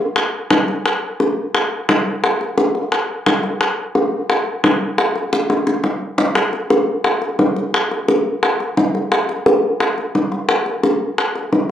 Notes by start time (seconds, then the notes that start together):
0.16 high bongo
0.51 high bongo, low bongo
0.68 high bongo
0.85 high bongo
1.20 high bongo
1.54 high bongo
1.89 high bongo, low bongo
2.24 high bongo
2.41 high bongo
2.58 high bongo
2.75 high bongo
2.92 high bongo
3.26 high bongo, low bongo
3.43 high bongo
3.61 high bongo
3.95 high bongo
4.30 high bongo
4.64 high bongo, low bongo
4.98 high bongo
5.16 high bongo
5.33 high bongo
5.50 high bongo
5.67 high bongo
5.84 low bongo
6.18 low bongo
6.35 high bongo
6.53 high bongo
6.70 high bongo
7.04 high bongo
7.22 high bongo
7.39 high bongo, low bongo
7.56 high bongo
7.74 high bongo
7.91 high bongo
8.08 high bongo
8.43 high bongo
8.60 high bongo
8.77 high bongo, low bongo
8.95 high bongo
9.12 high bongo
9.29 high bongo
9.46 high bongo
9.80 high bongo
9.98 high bongo
10.15 high bongo, low bongo
10.32 high bongo
10.49 high bongo
10.66 high bongo
10.83 high bongo
11.18 high bongo
11.35 high bongo
11.53 high bongo, low bongo